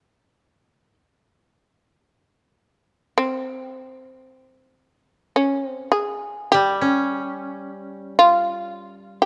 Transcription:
Already playing: shamisen C4
3.18 shamisen C4
5.36 shamisen C#4
5.66 shamisen C4
5.92 shamisen G#4
6.52 koto G3, shamisen G4
6.81 koto C#4
7.11 shamisen G#4
7.24 shamisen G4
7.44 shamisen G#4
7.56 shamisen G4
8.19 shamisen F4
9.22 shamisen G4

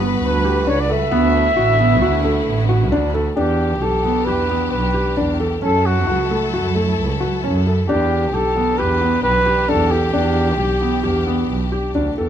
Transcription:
Already playing: double bass G1, string section G3 F#4 B4
0.00 felt piano B3
0.21 double bass D2, flugelhorn B4
0.44 felt piano G4
0.65 double bass C#2, felt piano D4, flugelhorn C#5
0.80 flugelhorn D5
0.89 felt piano A4, flugelhorn E5
1.11 double bass D2, string section D3 B3 E4, felt piano B3
1.57 double bass A1, felt piano F#4
1.80 felt piano B3
2.02 double bass D2, felt piano F#4
2.24 felt piano A3
2.47 double bass A1
2.69 felt piano F#4
2.92 double bass D2, felt piano D4
3.14 felt piano A4
3.36 double bass E2, string section E3 D4 G4, felt piano D4, flugelhorn G4
3.81 double bass B1, felt piano G4, flugelhorn A4
4.04 felt piano B3
4.25 double bass E2, felt piano G4, flugelhorn B4
4.50 felt piano B3
4.72 double bass B1, flugelhorn B4
4.94 felt piano G4
5.17 double bass E2, felt piano D4
5.40 felt piano A4
5.60 double bass F#2, string section F#3 E4 A4, felt piano C#4, flugelhorn A4
5.86 flugelhorn F#4
6.07 double bass C#2, felt piano F#4
6.31 felt piano A3
6.53 double bass F#2, felt piano F#4
6.75 felt piano A3
6.98 double bass C#2
7.20 felt piano F#4
7.43 double bass F#2, felt piano C#4
7.67 felt piano A4
7.87 double bass E2, string section E3 D4 G4, felt piano D4, flugelhorn G4
8.33 double bass B1, felt piano G4, flugelhorn A4
8.56 felt piano B3
8.78 double bass E2, felt piano G4, flugelhorn B4
9.01 felt piano B3
9.23 double bass B1, flugelhorn B4
9.46 felt piano G4
9.68 double bass E2, felt piano D4, flugelhorn A4
9.90 flugelhorn G4, felt piano A4
10.13 double bass E2, felt piano D4
10.58 double bass B1, felt piano G4
10.82 felt piano B3
11.04 double bass E2, felt piano G4
11.27 felt piano B3
11.49 double bass B1
11.72 felt piano G4
11.94 double bass D2, felt piano D4
12.16 double bass E2, felt piano A4

